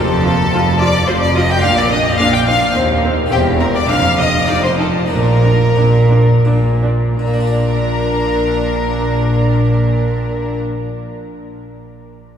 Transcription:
Already playing: F1 F2 C4 F4 A4 A5
0.25 F4
0.51 F1 F2 F4
0.79 F4 D5 D6
1.07 F1 F2 F4 C5 C6
1.21 D5 D6
1.35 F4 D#5 D#6
1.50 G5 G6
1.60 A#1 A#2 D4 F4 F5 F6
1.77 D5 D6
1.91 D4 D#5 D#6
2.18 A#1 A#2 D4 F5 F6
2.33 G5 G6
2.47 D4 F5 F6
2.71 D#2 C4 D#4
3.03 C4
3.26 A#3 C4 G4
3.30 E1 E2 C4 G4 G5
3.59 C4 A#4 A#5
3.74 D5 D6
3.85 A#3 D4 A#4 F5
3.89 F1 F2 D4 F5 F6
4.18 D4 D#5 D#6
4.45 F1 F2 C4 D#4 F4 D5
4.49 D6
4.64 C5 C6
4.78 D#4 A4 A5
5.06 A#3 D4 F4
5.10 A#1 A#2 D4 A#4 A#5
5.43 D4
5.76 A#1 A#2 D4
6.10 D4
6.45 A#1 A#2 D4
6.82 D4
7.19 A#1 A#2 D4 A#4 A#5
7.27 A#3
7.34 D4
7.40 F4
7.47 D5

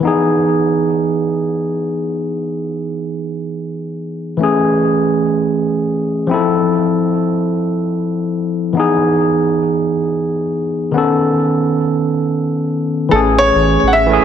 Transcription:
0.00 E3 B3
0.05 D#4 G#4
4.37 E3 A3 C#4
4.43 G#4
6.27 F3 C4
6.31 E4 A4
8.73 E3 B3
8.77 D#4 G#4
10.92 D#3 B3
10.96 C#4 A4
13.09 A1 E3 A3 A4
13.13 C#4 G#4
13.38 C#5
13.55 A1
13.83 A1
13.88 F#5
13.93 E5
14.07 E3 A3
14.11 C#4 G#4

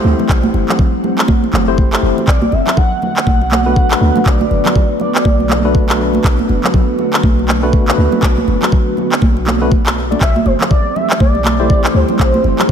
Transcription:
Already playing: E3 G3 A3 C4 E4 G4 C5 F#5
0.04 D2, high conga
0.19 muted conga, high conga, low conga
0.29 B1, kick, clap
0.43 high conga
0.54 F#1, muted conga
0.69 clap, low conga
0.79 kick, low conga
1.04 muted conga, low conga
1.18 clap
1.28 kick, high conga
1.44 muted conga
1.53 F#1, clap, high conga, low conga
1.68 A3 E4 G4 C5
1.78 kick, muted conga, high conga
1.92 A3 E4 G4 C5, clap
2.03 F#1
2.18 muted conga, high conga
2.27 B1 D3 F#3 A3 B3 F#4 D5, kick, clap
2.42 high conga
2.52 F#1 E5, muted conga
2.67 clap, low conga
2.77 F#5, kick, low conga
3.02 F#5, muted conga, low conga
3.17 clap
3.27 B1, kick, high conga
3.42 muted conga
3.51 clap, high conga
3.66 A3 D4 F#4 B4
3.76 kick, muted conga
3.91 A3 D4 F#4 B4, clap
4.01 D2, high conga
4.16 muted conga, high conga, low conga
4.26 B1 D5, kick, clap
4.41 high conga
4.51 F#1, muted conga
4.65 clap, low conga
4.76 kick, low conga
5.00 D5, muted conga, low conga
5.15 clap
5.25 B1, kick, high conga
5.40 muted conga
5.49 clap, high conga, low conga
5.65 A3 D4 F#4 B4
5.74 kick, muted conga, high conga
5.89 A3 D4 F#4 B4, clap
6.14 muted conga, high conga
6.24 B1, kick, clap
6.39 high conga
6.49 F#1, muted conga
6.64 clap, low conga
6.74 kick, low conga
6.98 muted conga, low conga
7.13 clap
7.23 B1, kick, high conga
7.39 muted conga
7.48 clap, high conga
7.63 A3 D4 F#4 B4
7.73 kick, muted conga
7.88 A3 D4 F#4 B4, clap
7.98 D2, high conga
8.12 muted conga, high conga, low conga
8.23 B1, kick, clap
8.38 high conga
8.48 F#1, muted conga
8.62 clap, low conga
8.72 kick, low conga
8.97 muted conga, low conga
9.12 clap
9.22 B1, kick, high conga
9.37 muted conga
9.46 clap, high conga, low conga
9.61 A3 D4 F#4 B4
9.72 kick, muted conga, high conga
9.86 clap
10.11 A3 D4 F#4 D5, muted conga, high conga
10.21 B1 E3 G3 C4 G4 E5, kick, clap
10.36 high conga
10.46 F#1 C5, muted conga
10.61 clap, low conga
10.70 D5, kick, low conga
10.95 E5, muted conga, low conga
11.10 clap
11.20 B1 D5, kick, high conga
11.35 muted conga
11.44 clap, high conga
11.60 A3 E4 G4 C5
11.70 kick, muted conga
11.84 A3 E4 G4 C5, clap
11.94 D2 C5, high conga
12.09 muted conga, high conga, low conga
12.19 B1, kick, clap
12.34 high conga
12.44 F#1, muted conga
12.59 clap, low conga

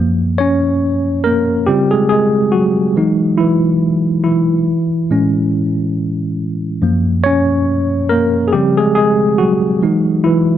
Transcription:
Already playing: F#2 F3 A#3
0.38 C#4 C#5
1.24 A#3 A#4
1.67 C#3 G3 C4 F4 G4
1.91 G#3 G#4
2.09 G#3 G#4
2.52 F#3 F#4
2.96 E3 G#3 D#4
3.38 E3 E4
4.24 E3 E4
5.10 A2 G#3 C#4
6.82 F#2 F3 A#3
7.24 C#4 C#5
8.09 A#3 A#4
8.48 G#4
8.53 C#3 F3 G3 C4 G4
8.77 G#3 G#4
8.95 G#3 G#4
9.38 F#3 F#4
9.82 E3 G#3 D#4
10.24 E3 E4

